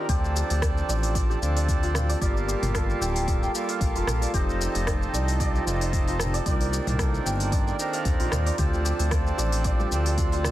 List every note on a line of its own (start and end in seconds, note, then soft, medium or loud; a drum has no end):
0.00 1.82 F4 medium
0.00 2.53 A#4 medium
0.00 1.81 C5 medium
0.00 0.43 D5 medium
0.00 1.51 G5 medium
0.07 0.43 D2 loud
0.07 1.38 F3 medium
0.07 1.38 C4 medium
0.07 1.39 D4 medium
0.07 0.35 G4 loud
0.07 1.40 A4 loud
0.07 kick loud
0.07 open hi-hat medium
0.07 shaker soft
0.25 shaker soft
0.35 1.29 G4 medium
0.35 shaker medium
0.50 0.83 D2 loud
0.50 open hi-hat soft
0.50 shaker soft
0.62 0.88 D5 medium
0.62 kick loud
0.62 cross-stick medium
0.62 open hi-hat medium
0.62 shaker soft
0.78 shaker soft
0.89 1.36 A1 loud
0.89 1.14 D5 medium
0.89 shaker medium
1.03 open hi-hat soft
1.03 shaker soft
1.15 1.56 D5 loud
1.15 kick loud
1.15 open hi-hat medium
1.15 shaker soft
1.30 2.48 G4 medium
1.30 shaker soft
1.40 2.16 D2 medium
1.40 2.17 F3 medium
1.40 2.18 C4 medium
1.40 2.19 D4 medium
1.40 shaker medium
1.44 2.20 A4 loud
1.56 2.09 D5 medium
1.56 open hi-hat soft
1.56 shaker soft
1.68 kick loud
1.68 open hi-hat medium
1.68 shaker soft
1.83 3.95 F4 medium
1.83 open hi-hat soft
1.83 shaker soft
1.95 cross-stick medium
1.95 mid tom medium
1.95 shaker medium
2.09 2.21 D5 medium
2.09 open hi-hat soft
2.09 shaker soft
2.19 2.55 G1 loud
2.19 3.50 G3 loud
2.19 3.51 A#3 medium
2.19 3.52 F4 medium
2.19 3.27 D5 loud
2.19 kick loud
2.19 open hi-hat medium
2.19 shaker soft
2.23 3.52 A4 loud
2.37 shaker soft
2.48 4.34 G4 medium
2.48 shaker medium
2.62 2.95 G1 loud
2.62 mid tom medium
2.62 open hi-hat soft
2.62 shaker soft
2.75 5.68 A4 medium
2.75 kick loud
2.75 cross-stick medium
2.75 open hi-hat medium
2.75 shaker soft
2.90 shaker soft
3.01 3.48 D1 loud
3.01 3.42 G5 medium
3.01 shaker medium
3.16 open hi-hat soft
3.16 shaker soft
3.28 4.22 D5 medium
3.28 kick loud
3.28 open hi-hat medium
3.28 shaker soft
3.42 5.49 G5 medium
3.42 shaker soft
3.52 4.30 G3 loud
3.52 4.31 A#3 medium
3.52 4.31 F4 medium
3.52 shaker medium
3.56 4.32 A4 loud
3.69 5.91 F5 medium
3.69 open hi-hat soft
3.69 shaker soft
3.81 3.91 A#1 medium
3.81 kick loud
3.81 open hi-hat medium
3.81 shaker soft
3.95 4.04 F1 medium
3.95 6.07 F4 medium
3.95 open hi-hat soft
3.95 shaker soft
4.07 4.26 A#1 medium
4.07 cross-stick medium
4.07 mid tom medium
4.07 shaker medium
4.22 4.87 D5 medium
4.22 open hi-hat soft
4.22 shaker soft
4.32 4.68 F1 loud
4.32 5.63 F3 medium
4.32 5.63 C4 medium
4.32 5.64 D#4 medium
4.32 4.60 G4 loud
4.32 5.65 A4 loud
4.32 kick loud
4.32 open hi-hat medium
4.32 shaker soft
4.49 shaker soft
4.61 5.54 G4 medium
4.61 shaker medium
4.75 5.08 F1 loud
4.75 open hi-hat soft
4.75 shaker soft
4.87 5.13 D5 medium
4.87 kick loud
4.87 cross-stick medium
4.87 open hi-hat medium
4.87 shaker soft
5.02 shaker soft
5.13 5.61 C2 loud
5.13 5.40 D5 medium
5.13 shaker medium
5.28 open hi-hat soft
5.28 shaker soft
5.40 5.81 D5 loud
5.40 kick loud
5.40 open hi-hat medium
5.40 shaker soft
5.55 6.72 G4 medium
5.55 shaker soft
5.65 6.40 F1 medium
5.65 6.42 F3 loud
5.65 6.43 C4 medium
5.65 6.44 D#4 loud
5.65 shaker medium
5.69 6.44 A4 loud
5.81 6.33 D5 medium
5.81 open hi-hat soft
5.81 shaker soft
5.93 kick loud
5.93 open hi-hat medium
5.93 shaker soft
6.08 8.20 F4 medium
6.08 open hi-hat soft
6.08 shaker soft
6.20 cross-stick medium
6.20 mid tom medium
6.20 shaker medium
6.34 6.45 D5 loud
6.34 open hi-hat soft
6.34 shaker soft
6.44 6.80 C2 loud
6.44 7.75 D#3 loud
6.44 7.76 C4 medium
6.44 7.76 D4 medium
6.44 7.52 D5 loud
6.44 kick loud
6.44 open hi-hat medium
6.44 shaker soft
6.48 7.77 A#3 loud
6.61 open hi-hat soft
6.61 shaker soft
6.72 8.58 G4 medium
6.72 shaker medium
6.87 7.20 C2 loud
6.87 mid tom medium
6.87 open hi-hat soft
6.87 shaker soft
6.99 9.92 A4 medium
6.99 kick loud
6.99 cross-stick medium
6.99 open hi-hat medium
6.99 shaker soft
7.15 shaker soft
7.26 7.73 G1 loud
7.26 7.66 G5 medium
7.26 shaker medium
7.40 open hi-hat soft
7.40 shaker soft
7.52 8.46 D5 medium
7.52 kick loud
7.52 open hi-hat medium
7.52 shaker soft
7.67 9.74 G5 medium
7.67 shaker soft
7.77 8.55 D#3 medium
7.77 8.55 C4 medium
7.77 8.56 D4 medium
7.77 8.57 A#4 loud
7.77 shaker medium
7.93 10.15 F5 loud
7.93 open hi-hat soft
7.93 shaker soft
8.05 8.16 D#2 medium
8.05 kick loud
8.05 open hi-hat medium
8.05 shaker soft
8.20 8.28 A#1 medium
8.20 10.32 F4 medium
8.20 open hi-hat soft
8.20 shaker soft
8.32 8.51 D#2 loud
8.32 cross-stick medium
8.32 mid tom medium
8.32 shaker medium
8.46 9.11 D5 medium
8.46 open hi-hat soft
8.46 shaker soft
8.57 8.92 D2 loud
8.57 9.87 F3 medium
8.57 9.88 C4 medium
8.57 9.89 D4 medium
8.57 8.85 G4 loud
8.57 kick loud
8.57 open hi-hat medium
8.57 low conga medium
8.57 shaker soft
8.61 9.89 A4 loud
8.74 shaker soft
8.85 9.79 G4 medium
8.85 shaker medium
8.99 9.32 D2 loud
8.99 open hi-hat soft
8.99 high bongo medium
8.99 shaker soft
9.11 9.38 D5 medium
9.11 kick loud
9.11 cross-stick medium
9.11 open hi-hat soft
9.11 shaker soft
9.27 shaker soft
9.38 9.85 A1 loud
9.38 9.64 D5 medium
9.38 high bongo medium
9.38 shaker medium
9.52 open hi-hat soft
9.52 shaker soft
9.64 10.06 D5 medium
9.64 kick loud
9.64 open hi-hat medium
9.64 shaker soft
9.79 10.51 G4 medium
9.79 high conga medium
9.79 shaker soft
9.89 10.51 D2 medium
9.89 10.51 F3 loud
9.89 10.51 C4 medium
9.89 10.51 D4 medium
9.89 10.51 A4 loud
9.89 shaker medium
10.06 10.51 D5 medium
10.06 open hi-hat soft
10.06 shaker soft
10.18 kick loud
10.18 open hi-hat medium
10.18 shaker soft
10.32 10.51 F4 medium
10.32 open hi-hat soft
10.32 high bongo soft
10.32 shaker soft
10.44 cross-stick medium
10.44 mid tom medium
10.44 shaker medium